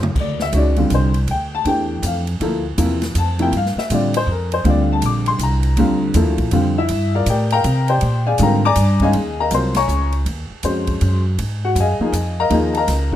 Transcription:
Already playing: F#2
0.03 mid tom
0.15 D2, kick, crash
0.20 D5
0.40 E5, snare
0.53 C#2 D#3 G#3 C#4 F#4, hi-hat pedal, ride
0.57 D5
0.76 D3 G3 C4 F4, ride
0.90 C2, hi-hat pedal, ride
0.94 C5
1.14 ride
1.27 D2 G5, ride
1.55 A5
1.65 E2 E3 A3 D4 G4 G5, ride
2.02 F2 F5, hi-hat pedal, ride
2.27 ride
2.40 D2 F3 A#3 E4 A4, ride
2.78 E2 C3 F3 A#3 E4, hi-hat pedal, ride
3.02 snare, ride
3.15 F2 A5, hi-hat pedal, ride
3.39 C3 F3 A#3 E4 G5, ride
3.52 G2, ride
3.57 F5
3.66 snare
3.76 E5, muted upright bass stroke, snare
3.90 A2 D3 G3 C4 F4 D5, hi-hat pedal, ride
4.14 C5, ride
4.27 F2
4.32 A#4
4.52 C5, ride
4.64 D2 D3 G3 C4 F4, ride
4.70 D5
4.81 F5
4.93 A5
5.02 A#1 D6, hi-hat pedal, ride
5.26 C6, ride
5.39 C2, hi-hat pedal, ride
5.43 A#5
5.63 ride
5.77 D2 D3 G3 C4 F4, ride
6.14 E2 F3 A#3 E4 A4, hi-hat pedal, ride
6.26 D2
6.38 A#1, kick, ride
6.51 F2 D3 G3 C4 F4, ride
6.78 E4 E5
6.88 G2, ride
7.15 F4 A#4 D5 F5
7.26 A2 G4 A#4 G5, hi-hat pedal, ride
7.30 D5
7.50 A#4 F5 G5 A#5, ride
7.64 C3, hi-hat pedal, ride
7.88 G4 C5 D5 G5, ride
8.01 A#2, ride
8.27 G#4 D5 F5 G#5
8.38 G#2 D3 G3 C4 F4, hi-hat pedal, ride
8.43 A#4 F5 G5 A#5
8.65 D5 G#5 A#5 D6
8.75 G2, hi-hat pedal, ride
9.00 D#3 G#3 C#4 D#4 G#4 D#5 F5 G#5, kick, ride
9.13 D#2, ride
9.40 A#4 D#5 F5 A#5
9.51 C2 F#3 C4 F4 A#4 C5 C6, hi-hat pedal, ride
9.75 C#5 G#5 A#5 C#6, snare, ride
9.88 C#2, hi-hat pedal
10.12 ride
10.26 D#2, ride
10.50 muted upright bass stroke
10.63 F2 G#3 C#4 F#4 C5, hi-hat pedal, ride
10.87 kick, ride
11.01 F#2, ride
11.39 G#2, ride
11.65 F#4 F#5
11.75 F#2, hi-hat pedal, ride
11.80 G#4 D#5 F5 G#5
12.00 F3 A#3 D#4 G#4, muted upright bass stroke
12.12 F2, hi-hat pedal, ride
12.40 A#4 D#5 F5 A#5
12.50 D#2 F3 A#3 D#4 G#4, ride
12.73 A5, ride
12.77 A#4 D#5 F5 A#5
12.87 C#2, snare, hi-hat pedal, ride
13.12 D#3 G#3, kick

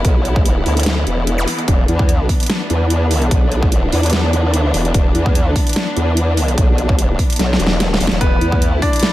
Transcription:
Already playing: E3 B3 E4
0.05 B1, kick, closed hi-hat
0.25 closed hi-hat
0.36 kick
0.46 closed hi-hat
0.66 D2, open hi-hat
0.77 closed hi-hat
0.80 closed hi-hat
0.83 snare, closed hi-hat
0.86 closed hi-hat
1.07 E1, closed hi-hat
1.27 closed hi-hat
1.38 zap
1.48 open hi-hat
1.59 closed hi-hat
1.68 E1 D4, kick, closed hi-hat
1.88 E2, closed hi-hat
1.99 kick
2.09 closed hi-hat
2.29 kick, open hi-hat
2.40 closed hi-hat
2.43 closed hi-hat
2.46 snare, closed hi-hat
2.50 closed hi-hat
2.70 E2, closed hi-hat
2.90 closed hi-hat
3.11 open hi-hat
3.22 closed hi-hat
3.31 B1, kick, closed hi-hat
3.52 closed hi-hat
3.63 kick
3.72 closed hi-hat
3.92 E2, open hi-hat
4.03 closed hi-hat
4.06 closed hi-hat
4.10 snare, closed hi-hat
4.13 closed hi-hat
4.33 closed hi-hat
4.49 D#2
4.54 closed hi-hat
4.74 E1, open hi-hat
4.85 closed hi-hat
4.94 E1, kick, closed hi-hat
5.15 E2, closed hi-hat
5.26 kick
5.35 closed hi-hat
5.56 kick, open hi-hat
5.67 closed hi-hat
5.69 closed hi-hat
5.73 snare, closed hi-hat
5.76 closed hi-hat
5.96 E2, closed hi-hat
6.17 closed hi-hat
6.37 open hi-hat
6.48 closed hi-hat
6.58 B1, kick, closed hi-hat
6.78 closed hi-hat
6.89 kick
6.99 closed hi-hat
7.19 kick, open hi-hat
7.30 closed hi-hat
7.33 closed hi-hat
7.36 B1, snare, closed hi-hat
7.39 closed hi-hat
7.53 snare
7.60 E1, closed hi-hat
7.67 snare
7.80 snare, closed hi-hat
7.94 snare
8.01 E1, open hi-hat
8.07 snare
8.12 E1, closed hi-hat
8.21 E1 A3 B3 E4 B4, kick, closed hi-hat
8.41 E2, closed hi-hat
8.52 kick
8.62 closed hi-hat
8.82 D4 D5, kick, open hi-hat
8.93 closed hi-hat
8.96 closed hi-hat
8.99 snare, closed hi-hat
9.03 closed hi-hat

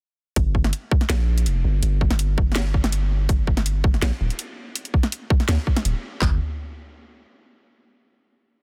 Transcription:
0.36 G1, kick, closed hi-hat
0.55 kick
0.64 snare
0.73 closed hi-hat
0.91 kick
1.01 snare
1.10 A#1, snare, closed hi-hat
1.38 closed hi-hat
1.46 F1, closed hi-hat
1.64 G1
1.82 G1, closed hi-hat
2.01 kick
2.11 G1, snare
2.19 closed hi-hat
2.38 kick
2.52 snare
2.56 snare, closed hi-hat
2.74 kick
2.84 snare, closed hi-hat
2.92 closed hi-hat
3.29 kick, closed hi-hat
3.47 kick
3.57 snare
3.66 closed hi-hat
3.84 kick
3.94 snare
4.02 A#1, snare, closed hi-hat
4.21 D1
4.30 closed hi-hat
4.39 closed hi-hat
4.75 closed hi-hat
4.85 closed hi-hat
4.94 kick
5.03 snare
5.12 closed hi-hat
5.30 kick
5.40 snare
5.49 D2, snare, closed hi-hat
5.67 kick
5.76 snare, closed hi-hat
5.85 D1, closed hi-hat
6.22 G1, kick, clap, floor tom

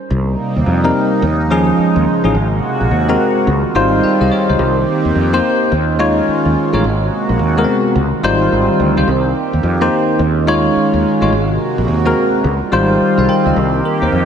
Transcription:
0.10 C2 C3 G3 A#3 D#4
0.56 D#2
0.66 F2
0.84 G3 C4 D#4 A#4
1.22 D#2 C#3 F3 G#3
1.50 F3 C#4 D#4 G#4
1.78 muted fretless electric bass stroke
1.96 D#2
2.24 A1 F3 C#4 D#4 G#4
2.35 G#1 C3 A#3 F#4
2.81 A#1
2.91 D#2
3.09 G#3 C4 F#4 A#4
3.46 C#2 D#3 G3 C4 F4
3.65 muted fretless electric bass stroke
3.75 G#1 G3 D#4 F4 C5
4.03 G#4 F5
4.21 C2 G4 D#5
4.32 F4 C#5
4.49 C#2 D#4 C5
4.59 C2 D#3 A#3 C4 G4
5.05 D#2
5.15 F2
5.33 A#3 D#4 G4 C5
5.71 D#2 D#3 G#3 C#4 F4
5.99 G#3 D#4 F4 C#5
6.28 muted fretless electric bass stroke
6.45 D#2
6.73 A1 G#3 D#4 F4 C#5
6.84 G#1 C3 A#3 F#4
7.29 A#1
7.39 D#2
7.57 G#3 B3 F#4 A#4
7.64 C4
7.96 C#2 D#3 G3 C4 F4
8.13 muted fretless electric bass stroke
8.23 G#1 G3 D#4 F4 C5
8.52 G#1
8.80 D2
8.97 C#2 G3 D#4 F4 C5
9.07 C2 A#3 G4
9.53 D#2
9.63 F2
9.81 A#3 D#4 G4 C5
10.19 D#2 D#3 G#3 C#4 F4
10.47 G#3 D#4 F4 C#5
10.76 muted fretless electric bass stroke
10.94 D#2
11.21 A1 G#3 D#4 F4 C#5
11.31 G#1 C3 A#3 F#4
11.78 A#1
11.88 D#2
12.05 G#3 C4 F#4 A#4
12.44 C#2 D#3 G3 C4 F4
12.62 muted fretless electric bass stroke
12.72 G#1 G3 D#4 F4 C5
13.00 muted fretless electric bass stroke
13.18 C2 G#4 F5
13.29 A#4 G5
13.46 C#2 G4 D#5
13.56 C2 A#3 G4
13.85 A#4
14.02 D#2 D#4 C5
14.12 F2

